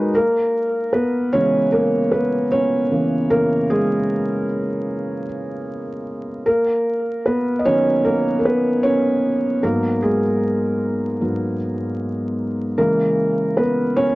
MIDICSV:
0, 0, Header, 1, 2, 480
1, 0, Start_track
1, 0, Tempo, 789474
1, 88, Time_signature, 4, 2, 24, 8
1, 8604, End_track
2, 0, Start_track
2, 0, Title_t, "Felt piano"
2, 0, Program_c, 0, 0
2, 0, Control_c, 0, 64, 127
2, 0, Note_on_c, 0, 56, 84
2, 0, Note_on_c, 0, 63, 77
2, 0, Note_on_c, 0, 66, 74
2, 0, Note_on_c, 0, 70, 70
2, 0, Note_on_c, 0, 71, 80
2, 64, Note_off_c, 0, 71, 0
2, 90, Note_off_c, 0, 70, 0
2, 90, Note_on_c, 0, 70, 105
2, 97, Control_c, 0, 64, 0
2, 98, Note_off_c, 0, 66, 0
2, 101, Note_off_c, 0, 63, 0
2, 102, Note_off_c, 0, 56, 0
2, 102, Note_on_c, 0, 58, 74
2, 208, Control_c, 0, 64, 127
2, 545, Note_off_c, 0, 70, 0
2, 551, Note_off_c, 0, 58, 0
2, 564, Note_on_c, 0, 71, 89
2, 576, Note_on_c, 0, 59, 73
2, 795, Note_off_c, 0, 59, 0
2, 807, Note_on_c, 0, 73, 104
2, 810, Note_on_c, 0, 49, 55
2, 813, Note_off_c, 0, 71, 0
2, 816, Note_on_c, 0, 52, 49
2, 818, Note_on_c, 0, 56, 61
2, 820, Note_on_c, 0, 61, 82
2, 1031, Note_off_c, 0, 73, 0
2, 1038, Note_off_c, 0, 61, 0
2, 1045, Note_on_c, 0, 70, 86
2, 1058, Note_on_c, 0, 58, 76
2, 1270, Note_off_c, 0, 70, 0
2, 1276, Note_off_c, 0, 58, 0
2, 1286, Note_on_c, 0, 71, 89
2, 1300, Note_on_c, 0, 59, 64
2, 1341, Note_off_c, 0, 71, 0
2, 1353, Note_off_c, 0, 59, 0
2, 1505, Note_off_c, 0, 49, 0
2, 1508, Note_off_c, 0, 52, 0
2, 1509, Note_off_c, 0, 56, 0
2, 1529, Note_on_c, 0, 73, 106
2, 1543, Note_on_c, 0, 61, 71
2, 1770, Note_on_c, 0, 49, 50
2, 1774, Note_on_c, 0, 52, 42
2, 1776, Note_on_c, 0, 58, 51
2, 1985, Note_off_c, 0, 49, 0
2, 1988, Note_off_c, 0, 52, 0
2, 1988, Note_off_c, 0, 58, 0
2, 1991, Note_off_c, 0, 61, 0
2, 2008, Note_on_c, 0, 70, 100
2, 2009, Note_on_c, 0, 49, 58
2, 2015, Note_on_c, 0, 52, 48
2, 2016, Note_on_c, 0, 58, 74
2, 2023, Note_off_c, 0, 73, 0
2, 2237, Note_off_c, 0, 58, 0
2, 2250, Note_on_c, 0, 68, 98
2, 2255, Note_off_c, 0, 70, 0
2, 2258, Note_on_c, 0, 56, 62
2, 2704, Note_off_c, 0, 49, 0
2, 2707, Note_off_c, 0, 52, 0
2, 3185, Note_off_c, 0, 68, 0
2, 3189, Note_off_c, 0, 56, 0
2, 3927, Note_on_c, 0, 70, 92
2, 3937, Control_c, 0, 64, 0
2, 3938, Note_on_c, 0, 58, 72
2, 4029, Control_c, 0, 64, 127
2, 4383, Note_off_c, 0, 70, 0
2, 4389, Note_off_c, 0, 58, 0
2, 4412, Note_on_c, 0, 71, 89
2, 4424, Note_on_c, 0, 59, 77
2, 4612, Note_off_c, 0, 59, 0
2, 4616, Note_on_c, 0, 75, 75
2, 4627, Note_off_c, 0, 71, 0
2, 4647, Note_off_c, 0, 75, 0
2, 4654, Note_on_c, 0, 73, 105
2, 4655, Note_on_c, 0, 51, 58
2, 4658, Note_on_c, 0, 54, 56
2, 4662, Note_on_c, 0, 61, 85
2, 4874, Note_off_c, 0, 73, 0
2, 4891, Note_on_c, 0, 70, 88
2, 4902, Note_on_c, 0, 58, 78
2, 4999, Note_off_c, 0, 51, 0
2, 5001, Note_off_c, 0, 54, 0
2, 5003, Note_off_c, 0, 61, 0
2, 5090, Note_off_c, 0, 70, 0
2, 5092, Note_off_c, 0, 58, 0
2, 5099, Note_on_c, 0, 70, 67
2, 5129, Note_off_c, 0, 70, 0
2, 5138, Note_on_c, 0, 71, 85
2, 5146, Note_on_c, 0, 59, 73
2, 5361, Note_off_c, 0, 59, 0
2, 5369, Note_on_c, 0, 73, 100
2, 5380, Note_off_c, 0, 71, 0
2, 5381, Note_on_c, 0, 61, 79
2, 5830, Note_off_c, 0, 61, 0
2, 5854, Note_on_c, 0, 44, 58
2, 5854, Note_on_c, 0, 70, 90
2, 5857, Control_c, 0, 64, 0
2, 5857, Note_on_c, 0, 54, 50
2, 5861, Note_on_c, 0, 59, 61
2, 5863, Note_off_c, 0, 73, 0
2, 5863, Note_on_c, 0, 58, 77
2, 5961, Control_c, 0, 64, 127
2, 6080, Note_off_c, 0, 58, 0
2, 6094, Note_on_c, 0, 68, 84
2, 6098, Note_off_c, 0, 70, 0
2, 6102, Note_on_c, 0, 56, 63
2, 6199, Note_off_c, 0, 44, 0
2, 6200, Note_off_c, 0, 54, 0
2, 6202, Note_off_c, 0, 59, 0
2, 6816, Note_on_c, 0, 44, 45
2, 6819, Note_on_c, 0, 54, 43
2, 6820, Note_on_c, 0, 59, 53
2, 7027, Note_off_c, 0, 68, 0
2, 7029, Note_off_c, 0, 44, 0
2, 7030, Note_off_c, 0, 54, 0
2, 7031, Note_off_c, 0, 56, 0
2, 7031, Note_off_c, 0, 59, 0
2, 7770, Note_on_c, 0, 70, 100
2, 7771, Note_on_c, 0, 49, 60
2, 7776, Note_on_c, 0, 52, 51
2, 7777, Control_c, 0, 64, 0
2, 7777, Note_on_c, 0, 56, 59
2, 7781, Note_on_c, 0, 58, 74
2, 7886, Control_c, 0, 64, 127
2, 8230, Note_off_c, 0, 58, 0
2, 8250, Note_on_c, 0, 71, 92
2, 8257, Note_on_c, 0, 59, 70
2, 8263, Note_off_c, 0, 70, 0
2, 8465, Note_off_c, 0, 49, 0
2, 8468, Note_off_c, 0, 52, 0
2, 8468, Note_off_c, 0, 56, 0
2, 8476, Note_off_c, 0, 59, 0
2, 8490, Note_on_c, 0, 73, 106
2, 8495, Note_on_c, 0, 61, 80
2, 8496, Note_off_c, 0, 71, 0
2, 8544, Note_off_c, 0, 73, 0
2, 8549, Note_off_c, 0, 61, 0
2, 8604, End_track
0, 0, End_of_file